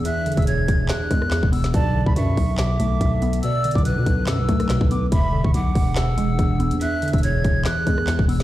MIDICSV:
0, 0, Header, 1, 7, 480
1, 0, Start_track
1, 0, Tempo, 422535
1, 57, Time_signature, 4, 2, 24, 8
1, 9580, End_track
2, 0, Start_track
2, 0, Title_t, "Flute"
2, 0, Program_c, 0, 73
2, 57, Note_on_c, 0, 90, 102
2, 402, Note_off_c, 0, 90, 0
2, 424, Note_on_c, 0, 88, 79
2, 509, Note_off_c, 0, 88, 0
2, 536, Note_on_c, 0, 92, 81
2, 988, Note_off_c, 0, 92, 0
2, 1016, Note_on_c, 0, 90, 92
2, 1693, Note_off_c, 0, 90, 0
2, 1735, Note_on_c, 0, 88, 85
2, 1918, Note_off_c, 0, 88, 0
2, 1975, Note_on_c, 0, 81, 104
2, 2321, Note_off_c, 0, 81, 0
2, 2343, Note_on_c, 0, 83, 77
2, 2429, Note_off_c, 0, 83, 0
2, 2456, Note_on_c, 0, 85, 87
2, 2907, Note_off_c, 0, 85, 0
2, 2936, Note_on_c, 0, 86, 90
2, 3542, Note_off_c, 0, 86, 0
2, 3895, Note_on_c, 0, 88, 120
2, 4241, Note_off_c, 0, 88, 0
2, 4263, Note_on_c, 0, 86, 90
2, 4349, Note_off_c, 0, 86, 0
2, 4375, Note_on_c, 0, 90, 96
2, 4827, Note_off_c, 0, 90, 0
2, 4855, Note_on_c, 0, 88, 91
2, 5533, Note_off_c, 0, 88, 0
2, 5575, Note_on_c, 0, 86, 80
2, 5758, Note_off_c, 0, 86, 0
2, 5816, Note_on_c, 0, 83, 105
2, 6161, Note_off_c, 0, 83, 0
2, 6184, Note_on_c, 0, 85, 73
2, 6270, Note_off_c, 0, 85, 0
2, 6297, Note_on_c, 0, 86, 86
2, 6748, Note_off_c, 0, 86, 0
2, 6777, Note_on_c, 0, 88, 77
2, 7691, Note_off_c, 0, 88, 0
2, 7737, Note_on_c, 0, 90, 104
2, 8082, Note_off_c, 0, 90, 0
2, 8104, Note_on_c, 0, 88, 77
2, 8190, Note_off_c, 0, 88, 0
2, 8217, Note_on_c, 0, 92, 81
2, 8668, Note_off_c, 0, 92, 0
2, 8697, Note_on_c, 0, 90, 94
2, 9373, Note_off_c, 0, 90, 0
2, 9416, Note_on_c, 0, 88, 86
2, 9580, Note_off_c, 0, 88, 0
2, 9580, End_track
3, 0, Start_track
3, 0, Title_t, "Pan flute"
3, 0, Program_c, 1, 75
3, 56, Note_on_c, 1, 76, 115
3, 507, Note_off_c, 1, 76, 0
3, 537, Note_on_c, 1, 73, 81
3, 988, Note_off_c, 1, 73, 0
3, 1977, Note_on_c, 1, 74, 108
3, 2428, Note_off_c, 1, 74, 0
3, 2456, Note_on_c, 1, 76, 94
3, 3851, Note_off_c, 1, 76, 0
3, 3896, Note_on_c, 1, 74, 108
3, 4348, Note_off_c, 1, 74, 0
3, 4376, Note_on_c, 1, 71, 87
3, 5771, Note_off_c, 1, 71, 0
3, 5815, Note_on_c, 1, 76, 109
3, 6267, Note_off_c, 1, 76, 0
3, 6298, Note_on_c, 1, 78, 98
3, 7486, Note_off_c, 1, 78, 0
3, 7737, Note_on_c, 1, 76, 112
3, 8188, Note_off_c, 1, 76, 0
3, 8218, Note_on_c, 1, 73, 79
3, 8669, Note_off_c, 1, 73, 0
3, 9580, End_track
4, 0, Start_track
4, 0, Title_t, "Ambient pad"
4, 0, Program_c, 2, 92
4, 0, Note_on_c, 2, 52, 84
4, 0, Note_on_c, 2, 62, 81
4, 0, Note_on_c, 2, 68, 94
4, 1938, Note_off_c, 2, 52, 0
4, 1938, Note_off_c, 2, 62, 0
4, 1938, Note_off_c, 2, 68, 0
4, 1978, Note_on_c, 2, 50, 87
4, 1978, Note_on_c, 2, 59, 80
4, 1978, Note_on_c, 2, 69, 93
4, 5779, Note_off_c, 2, 50, 0
4, 5779, Note_off_c, 2, 59, 0
4, 5779, Note_off_c, 2, 69, 0
4, 5817, Note_on_c, 2, 52, 86
4, 5817, Note_on_c, 2, 62, 77
4, 5817, Note_on_c, 2, 68, 93
4, 9580, Note_off_c, 2, 52, 0
4, 9580, Note_off_c, 2, 62, 0
4, 9580, Note_off_c, 2, 68, 0
4, 9580, End_track
5, 0, Start_track
5, 0, Title_t, "Synth pluck"
5, 0, Program_c, 3, 84
5, 0, Note_on_c, 3, 56, 80
5, 0, Note_on_c, 3, 59, 88
5, 62, Note_on_c, 3, 40, 98
5, 302, Note_on_c, 3, 50, 76
5, 530, Note_off_c, 3, 40, 0
5, 535, Note_off_c, 3, 56, 0
5, 544, Note_on_c, 3, 40, 77
5, 1006, Note_off_c, 3, 40, 0
5, 1016, Note_off_c, 3, 59, 0
5, 1020, Note_on_c, 3, 40, 77
5, 1255, Note_on_c, 3, 56, 86
5, 1486, Note_off_c, 3, 40, 0
5, 1499, Note_off_c, 3, 50, 0
5, 1500, Note_on_c, 3, 40, 91
5, 1729, Note_on_c, 3, 59, 83
5, 1973, Note_off_c, 3, 59, 0
5, 1976, Note_off_c, 3, 56, 0
5, 1978, Note_off_c, 3, 40, 0
5, 1980, Note_on_c, 3, 47, 101
5, 2215, Note_on_c, 3, 50, 79
5, 2449, Note_off_c, 3, 47, 0
5, 2462, Note_on_c, 3, 47, 73
5, 2929, Note_off_c, 3, 47, 0
5, 2942, Note_on_c, 3, 47, 76
5, 3176, Note_on_c, 3, 57, 81
5, 3399, Note_off_c, 3, 47, 0
5, 3413, Note_on_c, 3, 47, 88
5, 3416, Note_off_c, 3, 50, 0
5, 3659, Note_on_c, 3, 59, 89
5, 3891, Note_off_c, 3, 47, 0
5, 3904, Note_on_c, 3, 47, 91
5, 4145, Note_on_c, 3, 50, 79
5, 4359, Note_off_c, 3, 47, 0
5, 4372, Note_on_c, 3, 47, 76
5, 4377, Note_off_c, 3, 57, 0
5, 4841, Note_off_c, 3, 47, 0
5, 4854, Note_on_c, 3, 47, 75
5, 4858, Note_off_c, 3, 59, 0
5, 5098, Note_on_c, 3, 57, 83
5, 5326, Note_off_c, 3, 47, 0
5, 5340, Note_on_c, 3, 47, 91
5, 5341, Note_off_c, 3, 50, 0
5, 5583, Note_on_c, 3, 59, 87
5, 5816, Note_on_c, 3, 40, 89
5, 5817, Note_off_c, 3, 57, 0
5, 5818, Note_off_c, 3, 47, 0
5, 5820, Note_off_c, 3, 59, 0
5, 6050, Note_on_c, 3, 50, 79
5, 6281, Note_off_c, 3, 40, 0
5, 6294, Note_on_c, 3, 40, 71
5, 6758, Note_off_c, 3, 40, 0
5, 6772, Note_on_c, 3, 40, 80
5, 7014, Note_on_c, 3, 56, 82
5, 7252, Note_off_c, 3, 40, 0
5, 7253, Note_off_c, 3, 50, 0
5, 7266, Note_on_c, 3, 40, 99
5, 7494, Note_on_c, 3, 59, 91
5, 7728, Note_off_c, 3, 40, 0
5, 7742, Note_on_c, 3, 40, 97
5, 7982, Note_on_c, 3, 50, 77
5, 8212, Note_off_c, 3, 40, 0
5, 8215, Note_off_c, 3, 56, 0
5, 8225, Note_on_c, 3, 40, 76
5, 8686, Note_off_c, 3, 40, 0
5, 8696, Note_off_c, 3, 59, 0
5, 8700, Note_on_c, 3, 40, 80
5, 8935, Note_on_c, 3, 56, 81
5, 9167, Note_off_c, 3, 40, 0
5, 9179, Note_off_c, 3, 50, 0
5, 9181, Note_on_c, 3, 40, 90
5, 9409, Note_on_c, 3, 59, 79
5, 9580, Note_off_c, 3, 40, 0
5, 9580, Note_off_c, 3, 56, 0
5, 9580, Note_off_c, 3, 59, 0
5, 9580, End_track
6, 0, Start_track
6, 0, Title_t, "808-style bass"
6, 0, Program_c, 4, 38
6, 424, Note_on_c, 4, 28, 106
6, 763, Note_off_c, 4, 28, 0
6, 777, Note_on_c, 4, 28, 107
6, 1007, Note_off_c, 4, 28, 0
6, 1258, Note_on_c, 4, 40, 108
6, 1610, Note_off_c, 4, 40, 0
6, 1623, Note_on_c, 4, 28, 104
6, 1962, Note_off_c, 4, 28, 0
6, 1977, Note_on_c, 4, 35, 110
6, 2329, Note_off_c, 4, 35, 0
6, 2345, Note_on_c, 4, 35, 105
6, 2450, Note_off_c, 4, 35, 0
6, 2457, Note_on_c, 4, 42, 109
6, 2687, Note_off_c, 4, 42, 0
6, 2697, Note_on_c, 4, 35, 110
6, 3158, Note_off_c, 4, 35, 0
6, 3177, Note_on_c, 4, 35, 104
6, 3407, Note_off_c, 4, 35, 0
6, 3417, Note_on_c, 4, 35, 113
6, 3878, Note_off_c, 4, 35, 0
6, 4265, Note_on_c, 4, 35, 108
6, 4504, Note_on_c, 4, 47, 101
6, 4521, Note_off_c, 4, 35, 0
6, 4611, Note_off_c, 4, 47, 0
6, 4617, Note_on_c, 4, 35, 109
6, 4856, Note_on_c, 4, 42, 103
6, 4873, Note_off_c, 4, 35, 0
6, 4983, Note_on_c, 4, 35, 106
6, 5000, Note_off_c, 4, 42, 0
6, 5091, Note_off_c, 4, 35, 0
6, 5097, Note_on_c, 4, 35, 109
6, 5449, Note_off_c, 4, 35, 0
6, 5463, Note_on_c, 4, 35, 106
6, 5802, Note_off_c, 4, 35, 0
6, 5817, Note_on_c, 4, 28, 114
6, 6169, Note_off_c, 4, 28, 0
6, 6184, Note_on_c, 4, 28, 107
6, 6290, Note_off_c, 4, 28, 0
6, 6297, Note_on_c, 4, 35, 106
6, 6527, Note_off_c, 4, 35, 0
6, 6537, Note_on_c, 4, 28, 105
6, 6997, Note_off_c, 4, 28, 0
6, 7017, Note_on_c, 4, 28, 108
6, 7247, Note_off_c, 4, 28, 0
6, 7257, Note_on_c, 4, 28, 109
6, 7623, Note_on_c, 4, 40, 104
6, 7641, Note_off_c, 4, 28, 0
6, 7731, Note_off_c, 4, 40, 0
6, 8105, Note_on_c, 4, 28, 105
6, 8443, Note_off_c, 4, 28, 0
6, 8457, Note_on_c, 4, 28, 109
6, 8687, Note_off_c, 4, 28, 0
6, 8937, Note_on_c, 4, 40, 103
6, 9290, Note_off_c, 4, 40, 0
6, 9303, Note_on_c, 4, 28, 105
6, 9580, Note_off_c, 4, 28, 0
6, 9580, End_track
7, 0, Start_track
7, 0, Title_t, "Drums"
7, 57, Note_on_c, 9, 42, 101
7, 170, Note_off_c, 9, 42, 0
7, 297, Note_on_c, 9, 42, 66
7, 360, Note_off_c, 9, 42, 0
7, 360, Note_on_c, 9, 42, 56
7, 424, Note_off_c, 9, 42, 0
7, 424, Note_on_c, 9, 42, 50
7, 425, Note_on_c, 9, 36, 94
7, 480, Note_off_c, 9, 42, 0
7, 480, Note_on_c, 9, 42, 41
7, 536, Note_off_c, 9, 42, 0
7, 536, Note_on_c, 9, 42, 95
7, 538, Note_off_c, 9, 36, 0
7, 650, Note_off_c, 9, 42, 0
7, 777, Note_on_c, 9, 36, 98
7, 777, Note_on_c, 9, 42, 68
7, 890, Note_off_c, 9, 36, 0
7, 891, Note_off_c, 9, 42, 0
7, 1008, Note_on_c, 9, 39, 93
7, 1016, Note_on_c, 9, 38, 113
7, 1016, Note_on_c, 9, 42, 83
7, 1122, Note_off_c, 9, 39, 0
7, 1130, Note_off_c, 9, 38, 0
7, 1130, Note_off_c, 9, 42, 0
7, 1257, Note_on_c, 9, 36, 92
7, 1257, Note_on_c, 9, 42, 66
7, 1371, Note_off_c, 9, 36, 0
7, 1371, Note_off_c, 9, 42, 0
7, 1383, Note_on_c, 9, 37, 85
7, 1489, Note_on_c, 9, 39, 72
7, 1497, Note_off_c, 9, 37, 0
7, 1497, Note_on_c, 9, 38, 93
7, 1497, Note_on_c, 9, 42, 75
7, 1602, Note_off_c, 9, 39, 0
7, 1611, Note_off_c, 9, 38, 0
7, 1611, Note_off_c, 9, 42, 0
7, 1623, Note_on_c, 9, 36, 102
7, 1736, Note_off_c, 9, 36, 0
7, 1737, Note_on_c, 9, 42, 61
7, 1738, Note_on_c, 9, 46, 56
7, 1850, Note_off_c, 9, 42, 0
7, 1851, Note_off_c, 9, 46, 0
7, 1864, Note_on_c, 9, 38, 69
7, 1864, Note_on_c, 9, 42, 63
7, 1977, Note_off_c, 9, 42, 0
7, 1977, Note_on_c, 9, 36, 121
7, 1977, Note_on_c, 9, 42, 98
7, 1978, Note_off_c, 9, 38, 0
7, 2090, Note_off_c, 9, 36, 0
7, 2090, Note_off_c, 9, 42, 0
7, 2345, Note_on_c, 9, 36, 93
7, 2457, Note_on_c, 9, 42, 87
7, 2458, Note_off_c, 9, 36, 0
7, 2570, Note_off_c, 9, 42, 0
7, 2697, Note_on_c, 9, 36, 93
7, 2698, Note_on_c, 9, 46, 51
7, 2811, Note_off_c, 9, 36, 0
7, 2811, Note_off_c, 9, 46, 0
7, 2928, Note_on_c, 9, 39, 94
7, 2937, Note_on_c, 9, 38, 116
7, 2937, Note_on_c, 9, 42, 82
7, 3042, Note_off_c, 9, 39, 0
7, 3050, Note_off_c, 9, 38, 0
7, 3050, Note_off_c, 9, 42, 0
7, 3178, Note_on_c, 9, 42, 70
7, 3291, Note_off_c, 9, 42, 0
7, 3417, Note_on_c, 9, 36, 95
7, 3417, Note_on_c, 9, 42, 75
7, 3531, Note_off_c, 9, 36, 0
7, 3531, Note_off_c, 9, 42, 0
7, 3657, Note_on_c, 9, 42, 46
7, 3771, Note_off_c, 9, 42, 0
7, 3784, Note_on_c, 9, 42, 74
7, 3896, Note_off_c, 9, 42, 0
7, 3896, Note_on_c, 9, 42, 99
7, 4010, Note_off_c, 9, 42, 0
7, 4137, Note_on_c, 9, 42, 67
7, 4217, Note_off_c, 9, 42, 0
7, 4217, Note_on_c, 9, 42, 51
7, 4265, Note_on_c, 9, 36, 98
7, 4297, Note_off_c, 9, 42, 0
7, 4297, Note_on_c, 9, 42, 41
7, 4376, Note_off_c, 9, 42, 0
7, 4376, Note_on_c, 9, 42, 95
7, 4378, Note_off_c, 9, 36, 0
7, 4490, Note_off_c, 9, 42, 0
7, 4617, Note_on_c, 9, 36, 91
7, 4617, Note_on_c, 9, 42, 70
7, 4730, Note_off_c, 9, 36, 0
7, 4731, Note_off_c, 9, 42, 0
7, 4848, Note_on_c, 9, 39, 91
7, 4856, Note_on_c, 9, 42, 78
7, 4857, Note_on_c, 9, 38, 111
7, 4962, Note_off_c, 9, 39, 0
7, 4970, Note_off_c, 9, 38, 0
7, 4970, Note_off_c, 9, 42, 0
7, 5096, Note_on_c, 9, 42, 57
7, 5097, Note_on_c, 9, 36, 96
7, 5210, Note_off_c, 9, 42, 0
7, 5211, Note_off_c, 9, 36, 0
7, 5224, Note_on_c, 9, 37, 82
7, 5224, Note_on_c, 9, 42, 56
7, 5328, Note_on_c, 9, 39, 71
7, 5337, Note_off_c, 9, 37, 0
7, 5337, Note_off_c, 9, 42, 0
7, 5337, Note_on_c, 9, 38, 93
7, 5337, Note_on_c, 9, 42, 73
7, 5442, Note_off_c, 9, 39, 0
7, 5450, Note_off_c, 9, 38, 0
7, 5451, Note_off_c, 9, 42, 0
7, 5463, Note_on_c, 9, 36, 105
7, 5576, Note_off_c, 9, 36, 0
7, 5577, Note_on_c, 9, 42, 76
7, 5691, Note_off_c, 9, 42, 0
7, 5816, Note_on_c, 9, 42, 99
7, 5817, Note_on_c, 9, 36, 124
7, 5930, Note_off_c, 9, 36, 0
7, 5930, Note_off_c, 9, 42, 0
7, 6185, Note_on_c, 9, 36, 98
7, 6296, Note_on_c, 9, 42, 88
7, 6298, Note_off_c, 9, 36, 0
7, 6409, Note_off_c, 9, 42, 0
7, 6537, Note_on_c, 9, 36, 94
7, 6537, Note_on_c, 9, 46, 49
7, 6650, Note_off_c, 9, 36, 0
7, 6650, Note_off_c, 9, 46, 0
7, 6767, Note_on_c, 9, 39, 92
7, 6776, Note_on_c, 9, 38, 116
7, 6776, Note_on_c, 9, 42, 83
7, 6881, Note_off_c, 9, 39, 0
7, 6889, Note_off_c, 9, 42, 0
7, 6890, Note_off_c, 9, 38, 0
7, 7017, Note_on_c, 9, 42, 71
7, 7131, Note_off_c, 9, 42, 0
7, 7257, Note_on_c, 9, 36, 92
7, 7257, Note_on_c, 9, 42, 74
7, 7371, Note_off_c, 9, 36, 0
7, 7371, Note_off_c, 9, 42, 0
7, 7497, Note_on_c, 9, 42, 46
7, 7611, Note_off_c, 9, 42, 0
7, 7624, Note_on_c, 9, 42, 72
7, 7736, Note_off_c, 9, 42, 0
7, 7736, Note_on_c, 9, 42, 99
7, 7850, Note_off_c, 9, 42, 0
7, 7977, Note_on_c, 9, 42, 65
7, 8040, Note_off_c, 9, 42, 0
7, 8040, Note_on_c, 9, 42, 58
7, 8104, Note_off_c, 9, 42, 0
7, 8104, Note_on_c, 9, 42, 51
7, 8105, Note_on_c, 9, 36, 96
7, 8160, Note_off_c, 9, 42, 0
7, 8160, Note_on_c, 9, 42, 43
7, 8216, Note_off_c, 9, 42, 0
7, 8216, Note_on_c, 9, 42, 92
7, 8218, Note_off_c, 9, 36, 0
7, 8330, Note_off_c, 9, 42, 0
7, 8457, Note_on_c, 9, 36, 96
7, 8457, Note_on_c, 9, 42, 69
7, 8570, Note_off_c, 9, 36, 0
7, 8571, Note_off_c, 9, 42, 0
7, 8688, Note_on_c, 9, 39, 89
7, 8696, Note_on_c, 9, 42, 78
7, 8697, Note_on_c, 9, 38, 113
7, 8802, Note_off_c, 9, 39, 0
7, 8810, Note_off_c, 9, 38, 0
7, 8810, Note_off_c, 9, 42, 0
7, 8937, Note_on_c, 9, 36, 93
7, 8937, Note_on_c, 9, 42, 69
7, 9051, Note_off_c, 9, 36, 0
7, 9051, Note_off_c, 9, 42, 0
7, 9063, Note_on_c, 9, 37, 84
7, 9169, Note_on_c, 9, 39, 73
7, 9177, Note_off_c, 9, 37, 0
7, 9177, Note_on_c, 9, 38, 94
7, 9178, Note_on_c, 9, 42, 73
7, 9282, Note_off_c, 9, 39, 0
7, 9291, Note_off_c, 9, 38, 0
7, 9291, Note_off_c, 9, 42, 0
7, 9303, Note_on_c, 9, 36, 107
7, 9417, Note_off_c, 9, 36, 0
7, 9417, Note_on_c, 9, 42, 62
7, 9418, Note_on_c, 9, 46, 58
7, 9531, Note_off_c, 9, 42, 0
7, 9531, Note_off_c, 9, 46, 0
7, 9544, Note_on_c, 9, 38, 71
7, 9544, Note_on_c, 9, 42, 62
7, 9580, Note_off_c, 9, 38, 0
7, 9580, Note_off_c, 9, 42, 0
7, 9580, End_track
0, 0, End_of_file